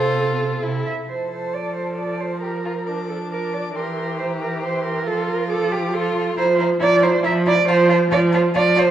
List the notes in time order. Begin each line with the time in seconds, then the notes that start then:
Already playing: C3 F4 A4 C5
0.63 C3 E4
0.86 E5
1.07 F3 A4 C5 A5
1.32 C5
1.54 D5
1.76 C5
1.97 D5 A5
2.21 C5
2.41 G4 A#4 A#5
2.65 F4
2.86 D4 D6
3.09 D4 A4
3.32 A#4 D6
3.53 D5
3.74 E3 G4 A#4 C6
3.97 A#4
4.19 C5 A#5
4.41 A#4
4.63 C5 C6
4.85 A#4
5.05 F3 F4 A4 C6
5.28 A#4
5.50 A4 D6
5.72 G4
5.94 F4 A4 C6
6.37 F3 E4 C5 A#5
6.58 E4 C5 A#5
6.80 F3 E4 D5 A#5
7.02 E4 C5 A#5
7.23 F3 E4 E5 A#5
7.46 E4 D5 A#5
7.67 F3 F4 C5 A5
7.89 F4 C5 A5
8.11 F3 F4 D5 A5
8.32 F4 C5 A5
8.54 F3 F4 D5 A5
8.76 F4 C5 A5